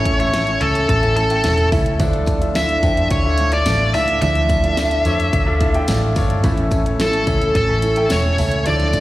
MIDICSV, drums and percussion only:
0, 0, Header, 1, 2, 480
1, 0, Start_track
1, 0, Key_signature, -1, "minor"
1, 0, Tempo, 555042
1, 1728, Time_signature, 4, 2, 24, 8
1, 7784, End_track
2, 0, Start_track
2, 0, Title_t, "Drums"
2, 47, Note_on_c, 9, 36, 85
2, 47, Note_on_c, 9, 42, 80
2, 134, Note_off_c, 9, 36, 0
2, 134, Note_off_c, 9, 42, 0
2, 173, Note_on_c, 9, 42, 57
2, 259, Note_off_c, 9, 42, 0
2, 290, Note_on_c, 9, 38, 97
2, 290, Note_on_c, 9, 42, 73
2, 377, Note_off_c, 9, 38, 0
2, 377, Note_off_c, 9, 42, 0
2, 406, Note_on_c, 9, 42, 34
2, 492, Note_off_c, 9, 42, 0
2, 527, Note_on_c, 9, 42, 60
2, 613, Note_off_c, 9, 42, 0
2, 651, Note_on_c, 9, 42, 50
2, 738, Note_off_c, 9, 42, 0
2, 769, Note_on_c, 9, 36, 85
2, 771, Note_on_c, 9, 42, 91
2, 856, Note_off_c, 9, 36, 0
2, 858, Note_off_c, 9, 42, 0
2, 891, Note_on_c, 9, 42, 32
2, 977, Note_off_c, 9, 42, 0
2, 1009, Note_on_c, 9, 42, 72
2, 1095, Note_off_c, 9, 42, 0
2, 1125, Note_on_c, 9, 42, 51
2, 1212, Note_off_c, 9, 42, 0
2, 1243, Note_on_c, 9, 42, 96
2, 1246, Note_on_c, 9, 38, 98
2, 1330, Note_off_c, 9, 42, 0
2, 1333, Note_off_c, 9, 38, 0
2, 1364, Note_on_c, 9, 42, 32
2, 1450, Note_off_c, 9, 42, 0
2, 1489, Note_on_c, 9, 36, 86
2, 1490, Note_on_c, 9, 46, 71
2, 1576, Note_off_c, 9, 36, 0
2, 1576, Note_off_c, 9, 46, 0
2, 1609, Note_on_c, 9, 42, 51
2, 1695, Note_off_c, 9, 42, 0
2, 1726, Note_on_c, 9, 42, 77
2, 1728, Note_on_c, 9, 36, 111
2, 1730, Note_on_c, 9, 54, 52
2, 1813, Note_off_c, 9, 42, 0
2, 1814, Note_off_c, 9, 36, 0
2, 1816, Note_off_c, 9, 54, 0
2, 1845, Note_on_c, 9, 42, 35
2, 1931, Note_off_c, 9, 42, 0
2, 1957, Note_on_c, 9, 54, 56
2, 1967, Note_on_c, 9, 36, 85
2, 1969, Note_on_c, 9, 42, 72
2, 2044, Note_off_c, 9, 54, 0
2, 2053, Note_off_c, 9, 36, 0
2, 2055, Note_off_c, 9, 42, 0
2, 2090, Note_on_c, 9, 42, 59
2, 2176, Note_off_c, 9, 42, 0
2, 2208, Note_on_c, 9, 38, 98
2, 2208, Note_on_c, 9, 42, 79
2, 2211, Note_on_c, 9, 54, 77
2, 2295, Note_off_c, 9, 38, 0
2, 2295, Note_off_c, 9, 42, 0
2, 2297, Note_off_c, 9, 54, 0
2, 2325, Note_on_c, 9, 42, 36
2, 2411, Note_off_c, 9, 42, 0
2, 2446, Note_on_c, 9, 54, 44
2, 2447, Note_on_c, 9, 36, 84
2, 2447, Note_on_c, 9, 42, 59
2, 2533, Note_off_c, 9, 36, 0
2, 2533, Note_off_c, 9, 42, 0
2, 2533, Note_off_c, 9, 54, 0
2, 2571, Note_on_c, 9, 42, 53
2, 2658, Note_off_c, 9, 42, 0
2, 2685, Note_on_c, 9, 42, 97
2, 2688, Note_on_c, 9, 36, 86
2, 2772, Note_off_c, 9, 42, 0
2, 2774, Note_off_c, 9, 36, 0
2, 2920, Note_on_c, 9, 42, 74
2, 2926, Note_on_c, 9, 54, 28
2, 3007, Note_off_c, 9, 42, 0
2, 3013, Note_off_c, 9, 54, 0
2, 3042, Note_on_c, 9, 42, 51
2, 3128, Note_off_c, 9, 42, 0
2, 3163, Note_on_c, 9, 42, 101
2, 3163, Note_on_c, 9, 54, 95
2, 3166, Note_on_c, 9, 38, 110
2, 3249, Note_off_c, 9, 42, 0
2, 3249, Note_off_c, 9, 54, 0
2, 3252, Note_off_c, 9, 38, 0
2, 3408, Note_on_c, 9, 46, 68
2, 3414, Note_on_c, 9, 54, 46
2, 3494, Note_off_c, 9, 46, 0
2, 3501, Note_off_c, 9, 54, 0
2, 3526, Note_on_c, 9, 42, 55
2, 3613, Note_off_c, 9, 42, 0
2, 3647, Note_on_c, 9, 42, 80
2, 3652, Note_on_c, 9, 54, 47
2, 3734, Note_off_c, 9, 42, 0
2, 3738, Note_off_c, 9, 54, 0
2, 3765, Note_on_c, 9, 42, 32
2, 3852, Note_off_c, 9, 42, 0
2, 3881, Note_on_c, 9, 54, 56
2, 3888, Note_on_c, 9, 36, 85
2, 3888, Note_on_c, 9, 42, 76
2, 3968, Note_off_c, 9, 54, 0
2, 3974, Note_off_c, 9, 36, 0
2, 3975, Note_off_c, 9, 42, 0
2, 4011, Note_on_c, 9, 42, 55
2, 4098, Note_off_c, 9, 42, 0
2, 4129, Note_on_c, 9, 38, 104
2, 4129, Note_on_c, 9, 42, 77
2, 4132, Note_on_c, 9, 54, 75
2, 4215, Note_off_c, 9, 38, 0
2, 4215, Note_off_c, 9, 42, 0
2, 4218, Note_off_c, 9, 54, 0
2, 4247, Note_on_c, 9, 42, 36
2, 4334, Note_off_c, 9, 42, 0
2, 4368, Note_on_c, 9, 42, 62
2, 4368, Note_on_c, 9, 54, 49
2, 4454, Note_off_c, 9, 42, 0
2, 4454, Note_off_c, 9, 54, 0
2, 4495, Note_on_c, 9, 42, 50
2, 4582, Note_off_c, 9, 42, 0
2, 4610, Note_on_c, 9, 36, 88
2, 4611, Note_on_c, 9, 42, 96
2, 4696, Note_off_c, 9, 36, 0
2, 4698, Note_off_c, 9, 42, 0
2, 4846, Note_on_c, 9, 54, 29
2, 4848, Note_on_c, 9, 42, 72
2, 4849, Note_on_c, 9, 36, 74
2, 4932, Note_off_c, 9, 54, 0
2, 4934, Note_off_c, 9, 42, 0
2, 4935, Note_off_c, 9, 36, 0
2, 4968, Note_on_c, 9, 42, 50
2, 5054, Note_off_c, 9, 42, 0
2, 5081, Note_on_c, 9, 54, 99
2, 5084, Note_on_c, 9, 42, 99
2, 5087, Note_on_c, 9, 38, 104
2, 5168, Note_off_c, 9, 54, 0
2, 5171, Note_off_c, 9, 42, 0
2, 5174, Note_off_c, 9, 38, 0
2, 5327, Note_on_c, 9, 46, 70
2, 5330, Note_on_c, 9, 36, 89
2, 5332, Note_on_c, 9, 54, 44
2, 5414, Note_off_c, 9, 46, 0
2, 5416, Note_off_c, 9, 36, 0
2, 5419, Note_off_c, 9, 54, 0
2, 5448, Note_on_c, 9, 42, 53
2, 5535, Note_off_c, 9, 42, 0
2, 5567, Note_on_c, 9, 42, 77
2, 5568, Note_on_c, 9, 36, 112
2, 5570, Note_on_c, 9, 54, 49
2, 5654, Note_off_c, 9, 36, 0
2, 5654, Note_off_c, 9, 42, 0
2, 5656, Note_off_c, 9, 54, 0
2, 5686, Note_on_c, 9, 42, 35
2, 5773, Note_off_c, 9, 42, 0
2, 5800, Note_on_c, 9, 54, 52
2, 5807, Note_on_c, 9, 36, 82
2, 5809, Note_on_c, 9, 42, 72
2, 5887, Note_off_c, 9, 54, 0
2, 5894, Note_off_c, 9, 36, 0
2, 5896, Note_off_c, 9, 42, 0
2, 5933, Note_on_c, 9, 42, 55
2, 6020, Note_off_c, 9, 42, 0
2, 6051, Note_on_c, 9, 38, 102
2, 6051, Note_on_c, 9, 42, 76
2, 6051, Note_on_c, 9, 54, 83
2, 6137, Note_off_c, 9, 38, 0
2, 6137, Note_off_c, 9, 42, 0
2, 6137, Note_off_c, 9, 54, 0
2, 6168, Note_on_c, 9, 42, 34
2, 6255, Note_off_c, 9, 42, 0
2, 6287, Note_on_c, 9, 42, 61
2, 6287, Note_on_c, 9, 54, 48
2, 6288, Note_on_c, 9, 36, 84
2, 6373, Note_off_c, 9, 42, 0
2, 6374, Note_off_c, 9, 36, 0
2, 6374, Note_off_c, 9, 54, 0
2, 6413, Note_on_c, 9, 42, 51
2, 6500, Note_off_c, 9, 42, 0
2, 6529, Note_on_c, 9, 36, 83
2, 6530, Note_on_c, 9, 42, 91
2, 6616, Note_off_c, 9, 36, 0
2, 6617, Note_off_c, 9, 42, 0
2, 6765, Note_on_c, 9, 54, 29
2, 6766, Note_on_c, 9, 42, 75
2, 6852, Note_off_c, 9, 42, 0
2, 6852, Note_off_c, 9, 54, 0
2, 6884, Note_on_c, 9, 42, 51
2, 6971, Note_off_c, 9, 42, 0
2, 7001, Note_on_c, 9, 54, 92
2, 7005, Note_on_c, 9, 42, 102
2, 7008, Note_on_c, 9, 38, 106
2, 7088, Note_off_c, 9, 54, 0
2, 7091, Note_off_c, 9, 42, 0
2, 7094, Note_off_c, 9, 38, 0
2, 7249, Note_on_c, 9, 54, 47
2, 7250, Note_on_c, 9, 46, 69
2, 7336, Note_off_c, 9, 54, 0
2, 7337, Note_off_c, 9, 46, 0
2, 7364, Note_on_c, 9, 42, 51
2, 7451, Note_off_c, 9, 42, 0
2, 7486, Note_on_c, 9, 42, 76
2, 7490, Note_on_c, 9, 54, 48
2, 7573, Note_off_c, 9, 42, 0
2, 7576, Note_off_c, 9, 54, 0
2, 7607, Note_on_c, 9, 42, 35
2, 7612, Note_on_c, 9, 38, 34
2, 7694, Note_off_c, 9, 42, 0
2, 7698, Note_off_c, 9, 38, 0
2, 7721, Note_on_c, 9, 54, 53
2, 7727, Note_on_c, 9, 36, 84
2, 7727, Note_on_c, 9, 42, 75
2, 7784, Note_off_c, 9, 36, 0
2, 7784, Note_off_c, 9, 42, 0
2, 7784, Note_off_c, 9, 54, 0
2, 7784, End_track
0, 0, End_of_file